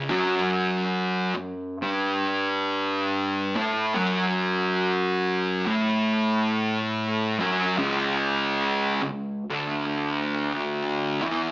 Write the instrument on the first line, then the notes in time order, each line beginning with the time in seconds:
distorted electric guitar
0.10 F#2 F#3
1.35 F#2
1.83 G2 G3
3.56 A2 A3
3.94 F#2 F#3
5.66 A2 A3
7.39 F#2 F#3
7.78 C#2 C#3
9.02 C#2
9.50 D2 D3
11.22 E2 E3